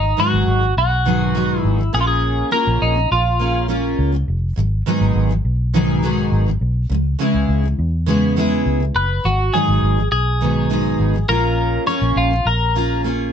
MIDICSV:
0, 0, Header, 1, 4, 480
1, 0, Start_track
1, 0, Key_signature, 5, "minor"
1, 0, Tempo, 584226
1, 1835, Time_signature, 4, 2, 24, 8
1, 10946, End_track
2, 0, Start_track
2, 0, Title_t, "Clean electric guitar"
2, 0, Program_c, 0, 27
2, 0, Note_on_c, 0, 63, 63
2, 162, Note_on_c, 0, 66, 77
2, 164, Note_off_c, 0, 63, 0
2, 605, Note_off_c, 0, 66, 0
2, 642, Note_on_c, 0, 66, 74
2, 1316, Note_off_c, 0, 66, 0
2, 1316, Note_on_c, 0, 64, 74
2, 1595, Note_off_c, 0, 64, 0
2, 1598, Note_on_c, 0, 68, 84
2, 1646, Note_off_c, 0, 68, 0
2, 1649, Note_on_c, 0, 65, 72
2, 1700, Note_off_c, 0, 65, 0
2, 1704, Note_on_c, 0, 68, 78
2, 2069, Note_off_c, 0, 68, 0
2, 2073, Note_on_c, 0, 70, 91
2, 2317, Note_on_c, 0, 63, 73
2, 2321, Note_off_c, 0, 70, 0
2, 2539, Note_off_c, 0, 63, 0
2, 2563, Note_on_c, 0, 65, 71
2, 3006, Note_off_c, 0, 65, 0
2, 7360, Note_on_c, 0, 71, 72
2, 7602, Note_on_c, 0, 66, 71
2, 7605, Note_off_c, 0, 71, 0
2, 7835, Note_on_c, 0, 68, 81
2, 7845, Note_off_c, 0, 66, 0
2, 8282, Note_off_c, 0, 68, 0
2, 8313, Note_on_c, 0, 68, 81
2, 9272, Note_off_c, 0, 68, 0
2, 9275, Note_on_c, 0, 70, 85
2, 9723, Note_off_c, 0, 70, 0
2, 9753, Note_on_c, 0, 73, 83
2, 10002, Note_off_c, 0, 73, 0
2, 10002, Note_on_c, 0, 65, 72
2, 10243, Note_on_c, 0, 70, 73
2, 10246, Note_off_c, 0, 65, 0
2, 10688, Note_off_c, 0, 70, 0
2, 10946, End_track
3, 0, Start_track
3, 0, Title_t, "Steel-string acoustic guitar"
3, 0, Program_c, 1, 25
3, 0, Note_on_c, 1, 44, 48
3, 0, Note_on_c, 1, 51, 53
3, 0, Note_on_c, 1, 54, 56
3, 98, Note_off_c, 1, 44, 0
3, 104, Note_off_c, 1, 51, 0
3, 107, Note_off_c, 1, 54, 0
3, 138, Note_on_c, 1, 44, 69
3, 144, Note_on_c, 1, 51, 63
3, 147, Note_on_c, 1, 54, 68
3, 149, Note_on_c, 1, 59, 66
3, 152, Note_on_c, 1, 63, 70
3, 153, Note_on_c, 1, 68, 70
3, 487, Note_off_c, 1, 44, 0
3, 497, Note_on_c, 1, 44, 39
3, 499, Note_off_c, 1, 51, 0
3, 507, Note_off_c, 1, 54, 0
3, 509, Note_on_c, 1, 51, 45
3, 511, Note_off_c, 1, 59, 0
3, 513, Note_off_c, 1, 63, 0
3, 513, Note_off_c, 1, 68, 0
3, 517, Note_on_c, 1, 54, 46
3, 697, Note_off_c, 1, 44, 0
3, 703, Note_off_c, 1, 51, 0
3, 707, Note_off_c, 1, 54, 0
3, 865, Note_on_c, 1, 44, 64
3, 868, Note_on_c, 1, 51, 68
3, 871, Note_on_c, 1, 54, 64
3, 874, Note_on_c, 1, 59, 61
3, 876, Note_on_c, 1, 63, 69
3, 882, Note_on_c, 1, 68, 69
3, 1093, Note_off_c, 1, 44, 0
3, 1096, Note_off_c, 1, 51, 0
3, 1097, Note_off_c, 1, 54, 0
3, 1101, Note_off_c, 1, 63, 0
3, 1102, Note_off_c, 1, 59, 0
3, 1103, Note_on_c, 1, 44, 57
3, 1105, Note_off_c, 1, 68, 0
3, 1106, Note_on_c, 1, 51, 60
3, 1107, Note_on_c, 1, 54, 68
3, 1111, Note_on_c, 1, 63, 66
3, 1112, Note_on_c, 1, 59, 68
3, 1115, Note_on_c, 1, 68, 69
3, 1455, Note_off_c, 1, 44, 0
3, 1465, Note_on_c, 1, 44, 41
3, 1466, Note_off_c, 1, 51, 0
3, 1471, Note_off_c, 1, 54, 0
3, 1473, Note_off_c, 1, 59, 0
3, 1473, Note_off_c, 1, 63, 0
3, 1475, Note_off_c, 1, 68, 0
3, 1476, Note_on_c, 1, 51, 45
3, 1485, Note_on_c, 1, 54, 52
3, 1580, Note_off_c, 1, 54, 0
3, 1584, Note_on_c, 1, 58, 67
3, 1590, Note_off_c, 1, 44, 0
3, 1592, Note_on_c, 1, 61, 68
3, 1594, Note_on_c, 1, 65, 71
3, 1595, Note_off_c, 1, 51, 0
3, 1598, Note_on_c, 1, 68, 67
3, 2053, Note_off_c, 1, 58, 0
3, 2059, Note_off_c, 1, 61, 0
3, 2063, Note_on_c, 1, 58, 65
3, 2064, Note_off_c, 1, 65, 0
3, 2069, Note_on_c, 1, 61, 70
3, 2074, Note_off_c, 1, 68, 0
3, 2074, Note_on_c, 1, 65, 69
3, 2077, Note_on_c, 1, 68, 72
3, 2415, Note_off_c, 1, 58, 0
3, 2424, Note_on_c, 1, 58, 43
3, 2432, Note_off_c, 1, 61, 0
3, 2434, Note_off_c, 1, 65, 0
3, 2436, Note_off_c, 1, 68, 0
3, 2444, Note_on_c, 1, 61, 43
3, 2622, Note_off_c, 1, 58, 0
3, 2631, Note_off_c, 1, 61, 0
3, 2789, Note_on_c, 1, 58, 65
3, 2796, Note_on_c, 1, 61, 65
3, 2801, Note_on_c, 1, 65, 71
3, 2805, Note_on_c, 1, 68, 72
3, 3017, Note_off_c, 1, 58, 0
3, 3021, Note_off_c, 1, 61, 0
3, 3026, Note_off_c, 1, 65, 0
3, 3026, Note_on_c, 1, 58, 59
3, 3030, Note_off_c, 1, 68, 0
3, 3031, Note_on_c, 1, 61, 61
3, 3036, Note_on_c, 1, 65, 68
3, 3040, Note_on_c, 1, 68, 69
3, 3378, Note_off_c, 1, 58, 0
3, 3388, Note_on_c, 1, 58, 49
3, 3393, Note_off_c, 1, 61, 0
3, 3396, Note_off_c, 1, 65, 0
3, 3397, Note_off_c, 1, 68, 0
3, 3407, Note_on_c, 1, 61, 53
3, 3584, Note_off_c, 1, 58, 0
3, 3593, Note_off_c, 1, 61, 0
3, 3747, Note_on_c, 1, 44, 62
3, 3759, Note_on_c, 1, 51, 65
3, 3768, Note_on_c, 1, 54, 64
3, 3943, Note_off_c, 1, 44, 0
3, 3949, Note_off_c, 1, 51, 0
3, 3953, Note_off_c, 1, 54, 0
3, 3993, Note_on_c, 1, 44, 74
3, 3997, Note_on_c, 1, 51, 73
3, 4000, Note_on_c, 1, 54, 78
3, 4004, Note_on_c, 1, 59, 80
3, 4005, Note_on_c, 1, 68, 81
3, 4007, Note_on_c, 1, 63, 81
3, 4339, Note_off_c, 1, 44, 0
3, 4349, Note_on_c, 1, 44, 47
3, 4350, Note_off_c, 1, 51, 0
3, 4358, Note_off_c, 1, 54, 0
3, 4360, Note_off_c, 1, 59, 0
3, 4360, Note_off_c, 1, 68, 0
3, 4360, Note_on_c, 1, 51, 52
3, 4361, Note_off_c, 1, 63, 0
3, 4369, Note_on_c, 1, 54, 50
3, 4544, Note_off_c, 1, 44, 0
3, 4549, Note_off_c, 1, 51, 0
3, 4554, Note_off_c, 1, 54, 0
3, 4711, Note_on_c, 1, 44, 70
3, 4716, Note_on_c, 1, 51, 81
3, 4719, Note_on_c, 1, 54, 72
3, 4719, Note_on_c, 1, 59, 82
3, 4724, Note_on_c, 1, 63, 79
3, 4727, Note_on_c, 1, 68, 77
3, 4942, Note_off_c, 1, 44, 0
3, 4947, Note_off_c, 1, 51, 0
3, 4947, Note_off_c, 1, 54, 0
3, 4950, Note_off_c, 1, 59, 0
3, 4952, Note_on_c, 1, 44, 74
3, 4953, Note_off_c, 1, 63, 0
3, 4957, Note_on_c, 1, 51, 74
3, 4957, Note_on_c, 1, 54, 74
3, 4958, Note_off_c, 1, 68, 0
3, 4960, Note_on_c, 1, 59, 73
3, 4963, Note_on_c, 1, 63, 73
3, 4968, Note_on_c, 1, 68, 76
3, 5302, Note_off_c, 1, 44, 0
3, 5312, Note_off_c, 1, 51, 0
3, 5312, Note_on_c, 1, 44, 49
3, 5316, Note_off_c, 1, 54, 0
3, 5317, Note_off_c, 1, 59, 0
3, 5319, Note_off_c, 1, 63, 0
3, 5322, Note_off_c, 1, 68, 0
3, 5322, Note_on_c, 1, 51, 52
3, 5333, Note_on_c, 1, 54, 55
3, 5505, Note_off_c, 1, 44, 0
3, 5510, Note_off_c, 1, 51, 0
3, 5516, Note_off_c, 1, 54, 0
3, 5665, Note_on_c, 1, 49, 65
3, 5688, Note_on_c, 1, 56, 70
3, 5862, Note_off_c, 1, 49, 0
3, 5874, Note_off_c, 1, 56, 0
3, 5904, Note_on_c, 1, 49, 78
3, 5908, Note_on_c, 1, 56, 77
3, 5912, Note_on_c, 1, 59, 74
3, 5916, Note_on_c, 1, 64, 80
3, 5918, Note_on_c, 1, 68, 76
3, 6261, Note_off_c, 1, 49, 0
3, 6270, Note_on_c, 1, 49, 46
3, 6272, Note_off_c, 1, 56, 0
3, 6274, Note_off_c, 1, 59, 0
3, 6275, Note_off_c, 1, 64, 0
3, 6277, Note_off_c, 1, 68, 0
3, 6289, Note_on_c, 1, 56, 50
3, 6465, Note_off_c, 1, 49, 0
3, 6474, Note_off_c, 1, 56, 0
3, 6625, Note_on_c, 1, 49, 76
3, 6629, Note_on_c, 1, 56, 74
3, 6635, Note_on_c, 1, 59, 72
3, 6636, Note_on_c, 1, 64, 79
3, 6641, Note_on_c, 1, 68, 81
3, 6859, Note_off_c, 1, 49, 0
3, 6865, Note_off_c, 1, 56, 0
3, 6868, Note_off_c, 1, 59, 0
3, 6869, Note_on_c, 1, 49, 69
3, 6874, Note_off_c, 1, 68, 0
3, 6874, Note_on_c, 1, 56, 79
3, 6875, Note_off_c, 1, 64, 0
3, 6878, Note_on_c, 1, 59, 73
3, 6884, Note_on_c, 1, 64, 75
3, 6884, Note_on_c, 1, 68, 78
3, 7221, Note_off_c, 1, 49, 0
3, 7231, Note_on_c, 1, 49, 39
3, 7235, Note_off_c, 1, 56, 0
3, 7236, Note_off_c, 1, 59, 0
3, 7239, Note_off_c, 1, 64, 0
3, 7239, Note_off_c, 1, 68, 0
3, 7249, Note_on_c, 1, 56, 49
3, 7425, Note_off_c, 1, 49, 0
3, 7434, Note_off_c, 1, 56, 0
3, 7590, Note_on_c, 1, 44, 48
3, 7603, Note_on_c, 1, 51, 55
3, 7610, Note_on_c, 1, 54, 56
3, 7784, Note_off_c, 1, 44, 0
3, 7791, Note_off_c, 1, 51, 0
3, 7794, Note_off_c, 1, 54, 0
3, 7832, Note_on_c, 1, 44, 62
3, 7836, Note_on_c, 1, 51, 67
3, 7839, Note_on_c, 1, 54, 68
3, 7840, Note_on_c, 1, 59, 65
3, 7846, Note_on_c, 1, 63, 73
3, 7848, Note_on_c, 1, 68, 76
3, 8183, Note_off_c, 1, 44, 0
3, 8193, Note_on_c, 1, 44, 41
3, 8195, Note_off_c, 1, 51, 0
3, 8197, Note_off_c, 1, 54, 0
3, 8197, Note_off_c, 1, 59, 0
3, 8200, Note_off_c, 1, 63, 0
3, 8202, Note_off_c, 1, 68, 0
3, 8204, Note_on_c, 1, 51, 39
3, 8214, Note_on_c, 1, 54, 44
3, 8386, Note_off_c, 1, 44, 0
3, 8391, Note_off_c, 1, 51, 0
3, 8397, Note_off_c, 1, 54, 0
3, 8550, Note_on_c, 1, 44, 65
3, 8554, Note_on_c, 1, 51, 67
3, 8559, Note_on_c, 1, 54, 61
3, 8560, Note_on_c, 1, 59, 67
3, 8562, Note_on_c, 1, 63, 66
3, 8563, Note_on_c, 1, 68, 71
3, 8778, Note_off_c, 1, 44, 0
3, 8783, Note_off_c, 1, 51, 0
3, 8785, Note_off_c, 1, 54, 0
3, 8788, Note_off_c, 1, 59, 0
3, 8788, Note_off_c, 1, 63, 0
3, 8788, Note_on_c, 1, 44, 65
3, 8791, Note_off_c, 1, 68, 0
3, 8793, Note_on_c, 1, 51, 59
3, 8795, Note_on_c, 1, 54, 60
3, 8797, Note_on_c, 1, 59, 74
3, 8798, Note_on_c, 1, 63, 72
3, 8801, Note_on_c, 1, 68, 70
3, 9138, Note_off_c, 1, 44, 0
3, 9148, Note_on_c, 1, 44, 43
3, 9149, Note_off_c, 1, 51, 0
3, 9155, Note_off_c, 1, 54, 0
3, 9156, Note_off_c, 1, 59, 0
3, 9157, Note_off_c, 1, 63, 0
3, 9158, Note_off_c, 1, 68, 0
3, 9159, Note_on_c, 1, 51, 47
3, 9167, Note_on_c, 1, 54, 48
3, 9266, Note_off_c, 1, 54, 0
3, 9269, Note_on_c, 1, 58, 61
3, 9272, Note_off_c, 1, 44, 0
3, 9272, Note_on_c, 1, 61, 64
3, 9277, Note_off_c, 1, 51, 0
3, 9277, Note_on_c, 1, 65, 67
3, 9282, Note_on_c, 1, 68, 66
3, 9738, Note_off_c, 1, 58, 0
3, 9744, Note_off_c, 1, 61, 0
3, 9748, Note_off_c, 1, 65, 0
3, 9748, Note_on_c, 1, 58, 68
3, 9754, Note_on_c, 1, 61, 70
3, 9758, Note_on_c, 1, 65, 69
3, 9759, Note_off_c, 1, 68, 0
3, 9762, Note_on_c, 1, 68, 73
3, 10102, Note_off_c, 1, 58, 0
3, 10112, Note_on_c, 1, 58, 42
3, 10115, Note_off_c, 1, 61, 0
3, 10117, Note_off_c, 1, 65, 0
3, 10119, Note_off_c, 1, 68, 0
3, 10134, Note_on_c, 1, 61, 45
3, 10306, Note_off_c, 1, 58, 0
3, 10317, Note_off_c, 1, 61, 0
3, 10478, Note_on_c, 1, 58, 66
3, 10482, Note_on_c, 1, 61, 64
3, 10485, Note_on_c, 1, 65, 74
3, 10491, Note_on_c, 1, 68, 66
3, 10706, Note_off_c, 1, 58, 0
3, 10713, Note_off_c, 1, 61, 0
3, 10716, Note_on_c, 1, 58, 62
3, 10717, Note_off_c, 1, 65, 0
3, 10722, Note_off_c, 1, 68, 0
3, 10723, Note_on_c, 1, 61, 60
3, 10727, Note_on_c, 1, 65, 71
3, 10732, Note_on_c, 1, 68, 73
3, 10946, Note_off_c, 1, 58, 0
3, 10946, Note_off_c, 1, 61, 0
3, 10946, Note_off_c, 1, 65, 0
3, 10946, Note_off_c, 1, 68, 0
3, 10946, End_track
4, 0, Start_track
4, 0, Title_t, "Fingered electric bass"
4, 0, Program_c, 2, 33
4, 0, Note_on_c, 2, 32, 78
4, 108, Note_off_c, 2, 32, 0
4, 275, Note_on_c, 2, 32, 76
4, 373, Note_off_c, 2, 32, 0
4, 391, Note_on_c, 2, 32, 75
4, 589, Note_off_c, 2, 32, 0
4, 631, Note_on_c, 2, 35, 65
4, 1320, Note_off_c, 2, 35, 0
4, 1353, Note_on_c, 2, 32, 66
4, 1551, Note_off_c, 2, 32, 0
4, 1595, Note_on_c, 2, 34, 78
4, 1988, Note_off_c, 2, 34, 0
4, 2196, Note_on_c, 2, 34, 76
4, 2294, Note_off_c, 2, 34, 0
4, 2317, Note_on_c, 2, 34, 78
4, 2513, Note_off_c, 2, 34, 0
4, 2560, Note_on_c, 2, 34, 74
4, 3245, Note_off_c, 2, 34, 0
4, 3277, Note_on_c, 2, 37, 74
4, 3473, Note_off_c, 2, 37, 0
4, 3517, Note_on_c, 2, 29, 76
4, 3713, Note_off_c, 2, 29, 0
4, 3759, Note_on_c, 2, 32, 79
4, 3954, Note_off_c, 2, 32, 0
4, 4117, Note_on_c, 2, 32, 74
4, 4215, Note_off_c, 2, 32, 0
4, 4236, Note_on_c, 2, 32, 88
4, 4433, Note_off_c, 2, 32, 0
4, 4475, Note_on_c, 2, 35, 75
4, 5162, Note_off_c, 2, 35, 0
4, 5194, Note_on_c, 2, 32, 75
4, 5391, Note_off_c, 2, 32, 0
4, 5433, Note_on_c, 2, 35, 71
4, 5630, Note_off_c, 2, 35, 0
4, 5672, Note_on_c, 2, 37, 83
4, 5870, Note_off_c, 2, 37, 0
4, 6035, Note_on_c, 2, 37, 77
4, 6134, Note_off_c, 2, 37, 0
4, 6154, Note_on_c, 2, 37, 78
4, 6351, Note_off_c, 2, 37, 0
4, 6397, Note_on_c, 2, 40, 78
4, 7083, Note_off_c, 2, 40, 0
4, 7115, Note_on_c, 2, 37, 65
4, 7312, Note_off_c, 2, 37, 0
4, 7354, Note_on_c, 2, 30, 69
4, 7551, Note_off_c, 2, 30, 0
4, 7598, Note_on_c, 2, 32, 87
4, 7794, Note_off_c, 2, 32, 0
4, 7956, Note_on_c, 2, 32, 78
4, 8054, Note_off_c, 2, 32, 0
4, 8074, Note_on_c, 2, 32, 81
4, 8271, Note_off_c, 2, 32, 0
4, 8313, Note_on_c, 2, 35, 66
4, 9001, Note_off_c, 2, 35, 0
4, 9036, Note_on_c, 2, 32, 65
4, 9233, Note_off_c, 2, 32, 0
4, 9275, Note_on_c, 2, 34, 82
4, 9669, Note_off_c, 2, 34, 0
4, 9873, Note_on_c, 2, 34, 75
4, 9973, Note_off_c, 2, 34, 0
4, 9992, Note_on_c, 2, 34, 83
4, 10191, Note_off_c, 2, 34, 0
4, 10233, Note_on_c, 2, 34, 72
4, 10923, Note_off_c, 2, 34, 0
4, 10946, End_track
0, 0, End_of_file